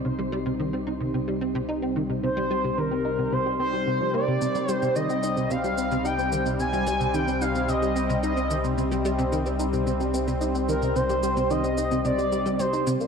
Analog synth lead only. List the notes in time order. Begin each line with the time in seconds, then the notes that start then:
2.23 C5
2.78 A#4
3.33 C5
3.60 C5
4.14 D5
4.70 C5
4.96 D#5
5.50 F5
6.05 G5
6.60 G#5
7.14 G5
7.41 F5
7.69 D#5
8.23 D#5
10.68 A#4
10.96 C5
11.50 D#5
12.05 D5
12.60 C5